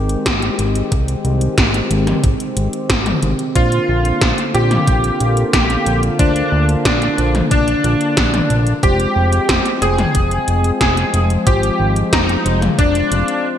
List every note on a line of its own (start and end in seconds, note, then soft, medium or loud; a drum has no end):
0.00 0.17 G#1 medium
0.00 3.52 D#3 medium
0.00 3.52 G#3 medium
0.00 6.15 C4 medium
0.00 3.52 G4 medium
0.09 closed hi-hat soft
0.26 0.50 G#1 medium
0.26 kick loud
0.26 snare loud
0.26 closed hi-hat medium
0.42 closed hi-hat soft
0.59 0.83 G#1 medium
0.59 closed hi-hat medium
0.75 closed hi-hat soft
0.92 1.16 C2 loud
0.92 kick loud
0.92 closed hi-hat medium
1.08 closed hi-hat soft
1.25 1.49 C2 loud
1.25 closed hi-hat soft
1.41 closed hi-hat soft
1.58 1.82 G#1 medium
1.58 kick loud
1.58 snare loud
1.58 closed hi-hat medium
1.74 closed hi-hat soft
1.91 2.15 G#1 loud
1.91 closed hi-hat medium
2.07 closed hi-hat soft
2.07 mid tom medium
2.24 2.36 G#1 medium
2.24 kick loud
2.24 closed hi-hat medium
2.40 closed hi-hat soft
2.57 2.69 G#1 medium
2.57 closed hi-hat medium
2.73 closed hi-hat soft
2.90 3.14 G#1 loud
2.90 kick loud
2.90 snare loud
2.90 closed hi-hat medium
3.06 closed hi-hat soft
3.06 mid tom medium
3.23 3.35 G#1 loud
3.23 closed hi-hat medium
3.39 closed hi-hat soft
3.55 3.80 A#1 loud
3.55 8.79 D3 medium
3.55 4.50 A#3 medium
3.55 8.79 A#3 medium
3.55 4.50 D4 medium
3.55 4.50 F4 medium
3.55 8.79 F4 medium
3.55 4.41 F4 loud
3.55 4.50 C5 medium
3.55 kick loud
3.55 closed hi-hat medium
3.72 closed hi-hat soft
3.89 4.13 A#1 medium
4.05 closed hi-hat soft
4.21 4.34 A#1 medium
4.21 kick loud
4.21 snare loud
4.21 closed hi-hat medium
4.38 closed hi-hat soft
4.54 4.78 A#1 medium
4.54 4.72 A#3 medium
4.54 4.72 D4 medium
4.54 4.72 F4 medium
4.54 5.40 G4 medium
4.54 4.72 C5 medium
4.54 closed hi-hat medium
4.71 closed hi-hat soft
4.71 mid tom medium
4.87 5.11 A#1 medium
4.87 kick loud
4.87 closed hi-hat medium
5.04 closed hi-hat soft
5.20 5.44 A#1 medium
5.20 closed hi-hat medium
5.37 closed hi-hat soft
5.53 5.77 A#1 medium
5.53 5.99 G4 medium
5.53 kick loud
5.53 snare loud
5.53 closed hi-hat medium
5.70 closed hi-hat soft
5.86 6.10 A#1 medium
5.86 closed hi-hat medium
6.03 closed hi-hat soft
6.19 6.43 D2 loud
6.19 7.14 A#3 medium
6.19 7.14 D4 medium
6.19 8.80 D4 medium
6.19 6.65 D4 medium
6.19 7.14 F4 medium
6.19 7.14 C5 loud
6.19 kick loud
6.19 closed hi-hat medium
6.36 closed hi-hat soft
6.52 6.76 D2 loud
6.69 closed hi-hat soft
6.85 7.09 A#1 medium
6.85 7.30 D4 medium
6.85 kick loud
6.85 snare loud
6.85 closed hi-hat medium
7.02 closed hi-hat soft
7.18 7.42 A#1 medium
7.18 7.36 A#3 medium
7.18 7.36 D4 medium
7.18 7.36 F4 medium
7.18 7.36 C5 medium
7.18 closed hi-hat medium
7.35 closed hi-hat soft
7.35 mid tom medium
7.51 7.75 A#1 medium
7.51 8.70 D4 medium
7.51 kick loud
7.51 closed hi-hat medium
7.68 closed hi-hat soft
7.84 7.96 A#1 loud
7.84 closed hi-hat medium
8.01 closed hi-hat soft
8.17 8.41 A#1 loud
8.17 kick loud
8.17 snare loud
8.17 closed hi-hat medium
8.34 closed hi-hat soft
8.34 mid tom medium
8.50 8.74 A#1 medium
8.50 closed hi-hat medium
8.67 closed hi-hat soft
8.83 9.07 F1 medium
8.83 13.58 F3 medium
8.83 9.78 G#3 medium
8.83 13.58 G#3 medium
8.83 13.58 C4 medium
8.83 9.78 F4 medium
8.83 9.78 G4 medium
8.83 9.69 G4 loud
8.83 9.78 C5 loud
8.83 11.44 G5 medium
8.83 kick loud
8.83 closed hi-hat medium
9.00 closed hi-hat soft
9.16 9.40 F1 medium
9.33 closed hi-hat soft
9.49 9.61 F1 medium
9.49 kick loud
9.49 snare loud
9.49 closed hi-hat medium
9.66 closed hi-hat soft
9.82 10.06 F1 medium
9.82 10.00 G#3 medium
9.82 10.00 F4 medium
9.82 10.00 G4 medium
9.82 10.68 G#4 medium
9.82 10.00 C5 medium
9.82 closed hi-hat medium
9.98 closed hi-hat soft
9.98 mid tom medium
10.15 10.39 F1 medium
10.15 kick loud
10.15 closed hi-hat medium
10.31 closed hi-hat soft
10.48 10.72 F1 medium
10.48 closed hi-hat medium
10.64 closed hi-hat soft
10.81 11.05 F1 medium
10.81 11.26 G#4 medium
10.81 kick loud
10.81 snare loud
10.81 closed hi-hat medium
10.97 closed hi-hat soft
11.14 11.38 F1 medium
11.14 closed hi-hat medium
11.30 closed hi-hat soft
11.47 11.71 G#1 loud
11.47 12.42 G#3 medium
11.47 12.42 F4 medium
11.47 13.58 F4 medium
11.47 11.92 G4 medium
11.47 12.42 G4 medium
11.47 12.42 C5 loud
11.47 kick loud
11.47 closed hi-hat medium
11.63 closed hi-hat soft
11.80 12.04 G#1 loud
11.96 closed hi-hat soft
12.13 12.37 F1 medium
12.13 12.58 D#4 medium
12.13 kick loud
12.13 snare loud
12.13 closed hi-hat medium
12.29 closed hi-hat soft
12.46 12.70 F1 loud
12.46 12.63 G#3 medium
12.46 12.63 F4 medium
12.46 12.63 G4 medium
12.46 12.63 C5 medium
12.46 closed hi-hat medium
12.62 closed hi-hat soft
12.62 mid tom medium
12.79 13.03 F1 medium
12.79 13.45 D4 medium
12.79 kick loud
12.79 closed hi-hat medium
12.95 closed hi-hat soft
13.12 13.24 F1 loud
13.12 closed hi-hat medium
13.28 closed hi-hat soft